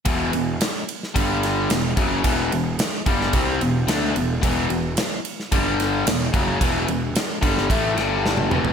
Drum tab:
RD |x-x-x-x-x-x-x-x-|x-x-x-x-x-x-x-x-|x-x-x-x-x-x-x-x-|x-x-x-x-x-x-----|
SD |----o--o--o-o---|----o--o----o---|----o--o--o-o---|----o--o--o-o---|
T1 |----------------|----------------|----------------|-------------o--|
T2 |----------------|----------------|----------------|--------------o-|
FT |----------------|----------------|----------------|---------------o|
BD |o-------o-----o-|o-----o-o-------|o-------o-----o-|o-----o-o-------|